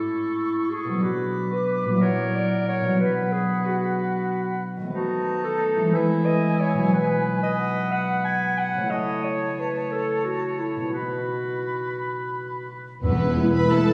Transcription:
Already playing: harp A2 A3 C#4 E4, clarinet E4, oboe A4, flute C#6
0.70 clarinet G#4
0.84 harp B2
0.89 harp F#3
0.93 harp B3
0.98 harp D4
1.02 clarinet F#4, oboe B4, flute D6
1.52 clarinet B4
1.83 harp A#2
1.88 harp F#3
1.92 harp E4
1.97 harp F#4
2.01 oboe A#4, clarinet C#5, flute F#5
2.35 clarinet D5
2.68 clarinet C#5
2.81 harp B2
2.86 harp F#3 D4
2.95 harp F#4
3.00 oboe B4, clarinet B4, flute F#5
3.32 clarinet G#4
3.66 clarinet F#4
4.77 harp D#3
4.81 harp A3
4.86 harp B3
4.90 harp B4
4.95 oboe D#4, clarinet F#4, flute A5
5.44 clarinet A4
5.76 harp E3
5.80 harp G#3
5.85 harp B3
5.89 harp B4
5.93 oboe E4, clarinet B4, flute G#5
6.25 clarinet D#5
6.60 clarinet C#5
6.73 harp B2
6.78 harp F#3
6.83 harp D#4
6.87 harp B4
6.93 oboe B4, clarinet B4
7.43 clarinet D#5
7.59 flute F#5
7.92 clarinet F#5
8.24 clarinet G#5
8.58 clarinet F#5
8.73 harp C#3
8.78 harp A3
8.82 harp E4
8.87 harp A4, clarinet D#5
8.91 oboe C#5, flute A5
9.24 clarinet C#5
9.60 clarinet B4
9.92 clarinet A4
10.25 clarinet F#4
10.59 clarinet E4
10.76 harp B2 B3
10.84 harp D#4
10.89 harp F#4
10.94 clarinet F#4, oboe B4, flute B5
13.03 double bass section E1, harp E2, cello section E2, timpani E2, violin section B3 B4, clarinet G#4, oboe B4, flute E6
13.19 harp G#4
13.36 viola section G#3 E4, harp E4, french horn section E4
13.54 harp G#4, violin section B4 B5
13.70 viola section G#3 E4, harp B3, violin section A4 A5
13.88 harp G#4

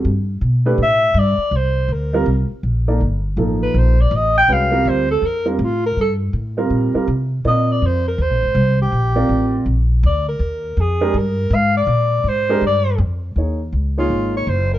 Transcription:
0.05 upright bass G2
0.41 upright bass B2
0.66 upright piano A3 D4 G4 B4
0.78 upright bass A2
0.83 alto saxophone E5
1.14 upright bass G2
1.19 alto saxophone D5
1.38 muted upright bass stroke
1.51 upright bass C2
1.56 alto saxophone C5
1.88 upright bass D2, alto saxophone A#4
2.13 upright piano G3 C4 F4 A#4
2.26 upright bass C2
2.50 muted upright bass stroke
2.63 upright bass A#1
2.88 upright piano A#3 D#4 A4 D5
3.00 upright bass G1
3.37 upright bass A1, upright piano F3 A#3 D#4 A4
3.63 alto saxophone B4
3.74 upright bass A#1, alto saxophone C5
4.01 alto saxophone D5
4.11 upright bass A1
4.16 alto saxophone D#5
4.38 alto saxophone G5
4.48 upright bass C2, upright piano G#3 C#4 F#4 B4
4.53 alto saxophone F5
4.71 upright piano G3 C4 F4 A#4
4.85 upright bass D2, alto saxophone C5
5.11 alto saxophone A4
5.22 upright bass F2
5.26 alto saxophone A#4
5.45 upright piano G3 C4 F4 A#4
5.49 alto saxophone D4
5.59 upright bass A2
5.64 alto saxophone F4
5.86 alto saxophone A#4
5.96 upright bass G2
6.01 alto saxophone A4
6.33 upright bass A2
6.57 upright piano G3 C4 F4 A#4
6.70 upright bass A#2
6.94 upright piano G3 C4 F4 A#4, muted upright bass stroke
7.07 upright bass C3
7.45 upright bass A#2, upright piano C4 F4 A#4 D5, alto saxophone D#5
7.72 alto saxophone D5
7.82 upright bass F2
7.86 alto saxophone C5
8.08 alto saxophone A#4
8.18 upright bass D#2
8.22 alto saxophone C5
8.30 upright bass A#1
8.43 upright bass G#1
8.55 upright bass C2
8.82 alto saxophone G4
8.92 upright bass A#1
9.16 upright piano C4 F4 A#4 D5
9.29 upright bass A1
9.66 upright bass A#1
10.03 upright bass D2, alto saxophone D5
10.29 alto saxophone A#4
10.39 upright bass D#2
10.77 upright bass F2, alto saxophone G#4
11.01 upright piano G#3 D4 G4 A#4
11.14 upright bass G2
11.18 alto saxophone A#4
11.50 upright bass G#2
11.55 alto saxophone F5
11.77 alto saxophone D5
11.87 upright bass A#2
12.24 upright bass G#2
12.29 alto saxophone C5
12.49 upright piano G#3 D4 G4 A#4
12.61 upright bass G2
12.67 alto saxophone D5
12.98 upright bass F2
13.36 upright bass D#2, upright piano A#3 D#4 G#4 C#5
13.72 upright bass C#2
13.98 upright piano A#3 D#4 G#4 C#5, alto saxophone F4
14.10 upright bass G#1
14.37 alto saxophone C#5
14.47 upright bass F#1, alto saxophone C5
14.74 alto saxophone A#4

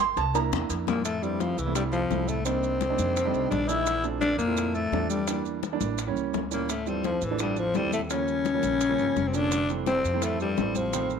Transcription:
Already playing: upright bass G1
0.00 grand piano C6, cowbell
0.17 upright bass C2, grand piano A5, cowbell, high bongo, maracas
0.34 grand piano A#3 D4 E4 A#5, cowbell, high bongo, high conga, maracas
0.52 upright bass E2, low bongo, high conga, maracas
0.70 upright bass F2, cowbell, high conga, maracas
0.87 baritone saxophone A#2, alto saxophone A#3, cowbell, low bongo, high conga, maracas
1.05 baritone saxophone A2, alto saxophone A3, high bongo, maracas
1.22 baritone saxophone G2, grand piano G3 A3 C4 E4, alto saxophone G3, high bongo, high conga, maracas
1.40 baritone saxophone F2, alto saxophone F3, high bongo, high conga, maracas
1.57 upright bass C2, baritone saxophone E2, alto saxophone E3, high bongo, high conga, maracas
1.66 grand piano G3 A3 C4 E4
1.75 baritone saxophone G2, alto saxophone G3, high bongo, maracas
1.92 baritone saxophone F2, alto saxophone F3, high conga, maracas
2.10 upright bass C2, grand piano G3 A3 C4 E4, high bongo, low bongo, high conga, maracas
2.27 baritone saxophone A2, alto saxophone A3, high bongo, high conga, maracas
2.44 baritone saxophone C3, grand piano G3 A#3 D4 D#4, alto saxophone C4, high bongo, high conga, maracas
2.63 high bongo, high conga, maracas
2.81 high bongo, high conga, maracas
2.90 grand piano G3 A#3 D4 D#4
2.98 upright bass F2, high bongo, high conga, maracas
3.16 high bongo, high conga, maracas
3.25 grand piano G3 A3 D4 D#4
3.34 upright bass C2, high conga, maracas
3.49 upright bass A#1, baritone saxophone D3, alto saxophone D4, high bongo, low bongo, high conga, maracas
3.67 baritone saxophone E3, grand piano G3 A3 D4 D#4, alto saxophone E4, high bongo, maracas
3.86 high bongo, high conga, maracas
4.04 grand piano F3 A3 C4 D4, high bongo, high conga, maracas
4.19 baritone saxophone D3, alto saxophone D4, high bongo, high conga, maracas
4.38 upright bass F2, baritone saxophone A#2, alto saxophone A#3, high bongo, high conga, maracas
4.47 grand piano F3 A3 C4 E4
4.57 high bongo, high conga, maracas
4.73 baritone saxophone A2, alto saxophone A3, high conga, maracas
4.92 upright bass E2, grand piano F3 A3 C4 D4, high bongo, low bongo, high conga, maracas
5.09 baritone saxophone G2, alto saxophone G3, high bongo, high conga, maracas
5.27 grand piano E3 G3 A#3 D4, high bongo, maracas
5.45 high bongo, high conga, maracas
5.63 high bongo, high conga, maracas
5.72 grand piano E3 G3 A#3 D4
5.80 upright bass A1, high bongo, high conga, maracas
5.98 high bongo, high conga, maracas
6.07 grand piano E3 G3 A#3 C#4
6.15 upright bass C#2, high conga, maracas
6.34 upright bass D2, high bongo, low bongo, high conga, maracas
6.51 baritone saxophone A#2, grand piano E3 G3 A#3 C#4, alto saxophone A#3, high bongo, high conga, maracas
6.69 baritone saxophone A2, alto saxophone A3, high bongo, high conga, maracas
6.86 baritone saxophone G2, grand piano E3 F3 A3 C4, alto saxophone G3, high bongo, high conga, maracas
7.04 baritone saxophone F2, alto saxophone F3, high bongo, high conga, maracas
7.21 upright bass A1, baritone saxophone E2, alto saxophone E3, high bongo, high conga, maracas
7.31 grand piano E3 F3 A3 D4
7.39 baritone saxophone G2, alto saxophone G3, high bongo, high conga, maracas
7.56 baritone saxophone F2, alto saxophone F3, high conga, maracas
7.74 upright bass D#2, baritone saxophone G2, grand piano E3 F3 A3 C4, alto saxophone G3, high bongo, low bongo, high conga, maracas
7.92 baritone saxophone A2, alto saxophone A3, high bongo, high conga, maracas
8.10 baritone saxophone C#3, grand piano F3 G3 A#3 C#4, alto saxophone C#4, high bongo, high conga, maracas
8.27 high bongo, high conga, maracas
8.45 high bongo, high conga, maracas
8.54 grand piano F3 G3 A#3 C#4
8.63 upright bass A#1, high bongo, high conga, maracas
8.81 high bongo, high conga, maracas
8.89 grand piano F3 G3 A#3 C#4
8.98 upright bass G1, high conga, maracas
9.16 upright bass F1, high bongo, low bongo, high conga, maracas
9.27 baritone saxophone C3, alto saxophone C4
9.33 baritone saxophone D3, grand piano F3 G3 A#3 C#4, alto saxophone D4, high bongo, maracas
9.52 high bongo, high conga, maracas
9.69 grand piano E3 G3 A3 C4, high bongo, high conga, maracas
9.86 baritone saxophone C3, alto saxophone C4, high bongo, high conga, maracas
10.04 upright bass F2, high bongo, maracas
10.13 grand piano E3 G3 A3 C4
10.22 baritone saxophone A2, alto saxophone A3, high bongo, high conga, maracas
10.40 baritone saxophone G2, alto saxophone G3, high conga, maracas
10.57 upright bass A1, grand piano E3 G3 A3 C4, high bongo, low bongo, high conga, maracas
10.75 baritone saxophone F2, alto saxophone F3, high bongo, high conga, maracas
10.93 grand piano D#3 G3 A3 C4, high bongo, high conga, maracas
11.10 high bongo, high conga, maracas

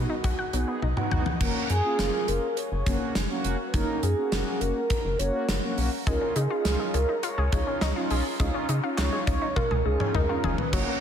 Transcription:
Already playing: analog polysynth B3 D#4 F#4, soft synth lead F#4
0.09 synth arpeggio sound D#4
0.24 analog synth bass B1, synth arpeggio sound F#4, kick, closed hi-hat
0.39 synth arpeggio sound F#5
0.53 analog synth bass B1, synth arpeggio sound F#3, analog polysynth B3 D#4 G#4, closed hi-hat
0.68 synth arpeggio sound B3
0.82 analog synth bass B1, synth arpeggio sound D#4, high tom
0.97 analog polysynth B3 D#4 F#4, synth arpeggio sound F#4, mid tom
1.11 analog synth bass B1, synth arpeggio sound F#5, mid tom
1.26 floor tom
1.41 analog synth bass F#1, analog polysynth A#3 C#4 F#4, soft synth lead A#4, kick, crash
1.70 analog synth bass F#2, soft synth lead G#4, closed hi-hat
1.84 analog polysynth A#3 C#4 F4
1.99 analog synth bass F#1, snare, closed hi-hat
2.28 analog synth bass F#1, soft synth lead A#4, closed hi-hat
2.57 soft synth lead C#5, closed hi-hat
2.72 analog synth bass F#1
2.86 analog synth bass F#1, analog polysynth A#3 C#4 F#4, kick, closed hi-hat
3.15 analog synth bass F#1, snare, closed hi-hat
3.30 analog polysynth A#3 C#4 F#4
3.44 analog synth bass F1, closed hi-hat
3.67 soft synth lead B4
3.74 analog synth bass F#1, analog polysynth A#3 C#4 D#4, soft synth lead A#4, kick, closed hi-hat
4.03 analog synth bass F#2, soft synth lead G#4, closed hi-hat
4.18 analog polysynth A#3 C#4 F#4
4.32 analog synth bass F#1, snare, closed hi-hat
4.61 analog synth bass F#1, soft synth lead A#4, closed hi-hat
4.90 kick, closed hi-hat
5.05 analog synth bass F#1
5.19 analog synth bass F#1, analog polysynth A#3 C#4 F#4, soft synth lead C#5, closed hi-hat
5.49 analog synth bass F#1, snare, closed hi-hat
5.63 analog polysynth A#3 C#4 F#4
5.78 analog synth bass B1, open hi-hat
6.07 analog synth bass C#2, synth arpeggio sound G#3, analog polysynth C#4 D#4 F4, soft synth lead A#4, kick, closed hi-hat
6.21 synth arpeggio sound C#4
6.36 analog synth bass C#3, synth arpeggio sound D#4, soft synth lead G#4, closed hi-hat
6.50 analog polysynth C#4 D#4 F4, synth arpeggio sound F4
6.65 analog synth bass C#2, snare, closed hi-hat
6.79 synth arpeggio sound G#3
6.94 analog synth bass C#2, synth arpeggio sound C#4, soft synth lead A#4, closed hi-hat
7.09 synth arpeggio sound D#4
7.23 synth arpeggio sound F4, soft synth lead C#5, closed hi-hat
7.38 analog synth bass C#2, synth arpeggio sound G#4
7.52 analog synth bass C#2, synth arpeggio sound G#3, analog polysynth C#4 D#4 F4, kick, closed hi-hat
7.67 synth arpeggio sound C#4
7.81 analog synth bass C#2, synth arpeggio sound D#4, snare, closed hi-hat
7.96 analog polysynth C#4 D#4 F4, synth arpeggio sound F4
8.10 analog synth bass B1, synth arpeggio sound G#4, open hi-hat
8.40 analog synth bass C#2, synth arpeggio sound G#3, analog polysynth C#4 D#4 F4, kick, closed hi-hat
8.54 synth arpeggio sound C#4
8.69 analog synth bass C#3, synth arpeggio sound D#4, closed hi-hat
8.84 analog polysynth C#4 D#4 F4, synth arpeggio sound F4
8.98 analog synth bass C#2, soft synth lead C#5, snare, clap, closed hi-hat
9.12 synth arpeggio sound G#3
9.27 analog synth bass C#2, synth arpeggio sound C#4, soft synth lead C#5, kick, closed hi-hat
9.42 synth arpeggio sound D#4
9.56 synth arpeggio sound F4, soft synth lead A#4, kick, high tom
9.71 analog synth bass C#2, synth arpeggio sound G#4, high tom
9.78 soft synth lead A#4
9.85 analog synth bass C#2, synth arpeggio sound G#3, analog polysynth C#4 D#4 F4, soft synth lead G#4
10.00 synth arpeggio sound C#4, mid tom
10.15 analog synth bass C#2, synth arpeggio sound D#4, soft synth lead A#4, mid tom
10.29 analog polysynth C#4 D#4 F4, synth arpeggio sound F4
10.44 analog synth bass F1, synth arpeggio sound G#4, floor tom
10.58 soft synth lead B4, floor tom
10.73 analog synth bass F#1, synth arpeggio sound F#3, analog polysynth A#3 C#4 F#4, soft synth lead C#5, kick, crash
10.87 synth arpeggio sound A#3

